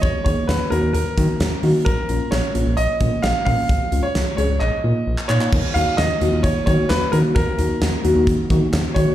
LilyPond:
<<
  \new Staff \with { instrumentName = "Grand piano" } { \time 4/4 \key ees \minor \tempo 4 = 131 des''8 des''8 ces''8 bes'8 bes'4. r8 | bes'4 des''4 ees''4 f''8 f''8~ | f''8. des''8. des''8 ees''4. des''8~ | des''8 f''8 ees''4 des''8 des''8 ces''8 bes'8 |
bes'2 r4. des''8 | }
  \new Staff \with { instrumentName = "Synth keys" } { \time 4/4 \key ees \minor r8 <bes ees' aes'>16 r8. <bes ees' ges'>16 r8. <bes ees' ges'>16 r8. <bes ees' ges'>16 r16 | r8 <bes des' f'>16 r8. <bes des' f'>16 r8. <bes des' f'>16 r8. <bes des' f'>16 r16 | r8 <aes des' f'>16 r8. <aes des' aes'>16 r8. <bes ees' f'>16 r8. <bes ees' f'>16 r16 | r8 <bes ees' ges'>16 r8. <bes ees' ges'>16 <bes ees' f'>16 r8 <bes ees' ges'>16 r8. <bes ees' ges'>16 <bes ees' ges'>16 |
r8 <bes ees' ges'>16 r8. <bes ees' ges'>16 <bes ees' ges'>16 r8 <bes ees' ges'>16 r8. <bes ees' ges'>16 <bes ees' ges'>16 | }
  \new Staff \with { instrumentName = "Analog synth bass" } { \clef bass \time 4/4 \key ees \minor ees,16 r16 ees,16 r16 ees,16 r16 ees,16 ees,16 ees,16 r16 ees16 r16 ees,16 r16 ees16 r16 | bes,,16 r16 bes,,16 r16 bes,,16 r16 bes,,16 bes,,16 bes,,16 r16 bes,16 r16 bes,,16 r16 bes,16 r16 | des,16 r16 des,16 r16 des,16 r16 des,16 des,16 bes,,16 r16 bes,16 r16 bes,,16 r16 bes,16 r16 | ees,16 r16 ees,16 r16 ees,16 r16 ees,16 ees,16 ees,16 r16 ees16 r16 ees,16 r16 ees16 r16 |
ees,16 r16 ees,16 r16 ees,16 r16 ees,16 ees,16 ees,16 r16 ees16 r16 ees,16 r16 ees16 r16 | }
  \new DrumStaff \with { instrumentName = "Drums" } \drummode { \time 4/4 <hh bd>8 <hh bd>8 <hh sn>8 hh8 hh8 <hh bd>8 <hh sn>8 hho8 | <hh bd>8 hh8 <hh sn>8 hh8 hh8 <hh bd>8 <hh sn>8 <hho bd>8 | <hh bd>8 hh8 <hh sn>8 hh8 hc4 r16 hc16 hc16 hc16 | <cymc bd>8 hh8 <hh sn>8 hh8 <hh bd>8 <hh bd>8 <hc hh sn>8 hh8 |
<hh bd>8 hh8 <hh sn>8 hh8 <hh bd>8 <hh bd>8 <hc hh sn>8 <hh bd>8 | }
>>